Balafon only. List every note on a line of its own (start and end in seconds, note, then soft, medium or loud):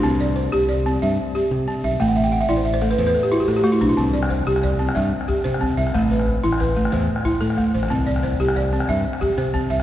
0.00 0.36 C4 medium
0.00 0.11 D4 medium
0.20 0.68 D5 medium
0.36 0.86 C5 medium
0.52 0.85 G4 medium
0.69 1.18 D5 medium
0.86 1.19 C4 medium
1.02 1.51 E5 medium
1.35 1.68 G4 medium
1.68 2.01 C4 medium
1.84 2.15 E5 medium
2.00 2.33 A3 medium
2.00 2.16 G5 medium
2.08 2.24 F#5 medium
2.16 2.32 E5 medium
2.24 2.40 G5 medium
2.32 2.48 F#5 medium
2.41 2.56 E5 medium
2.49 2.82 E4 medium
2.49 2.65 D5 medium
2.57 2.72 C5 medium
2.65 2.81 E5 medium
2.74 2.89 C5 medium
2.82 3.15 A3 medium
2.82 2.97 A4 medium
2.91 3.06 B4 medium
2.98 3.14 C5 medium
3.07 3.22 B4 medium
3.15 3.30 A4 medium
3.23 3.39 G4 medium
3.32 3.65 E4 medium
3.32 3.47 F#4 medium
3.40 3.55 G4 medium
3.48 3.64 A4 medium
3.56 3.72 G4 medium
3.64 3.97 A3 medium
3.64 3.80 F#4 medium
3.72 3.88 E4 medium
3.81 3.96 D4 medium
3.89 4.05 E4 medium
3.97 4.30 C4 medium
4.13 4.62 D5 medium
4.30 4.80 C5 medium
4.47 4.80 G4 medium
4.63 5.13 D5 medium
4.79 5.12 C4 medium
4.95 5.45 E5 medium
5.28 5.61 G4 medium
5.44 5.94 C5 medium
5.61 5.94 C4 medium
5.77 6.11 E5 medium
5.95 6.27 A3 medium
6.11 6.59 B4 medium
6.44 6.76 E4 medium
6.60 7.09 B4 medium
6.76 7.09 A3 medium
6.92 7.42 C5 medium
7.25 7.58 E4 medium
7.41 7.90 A4 medium
7.58 7.91 A3 medium
7.74 8.07 C5 medium
7.90 8.23 C4 medium
8.07 8.55 D5 medium
8.23 8.73 C5 medium
8.40 8.73 G4 medium
8.56 9.06 D5 medium
8.73 9.06 C4 medium
8.89 9.38 E5 medium
9.21 9.54 G4 medium
9.38 9.83 C5 medium
9.54 9.83 C4 medium
9.70 9.83 E5 medium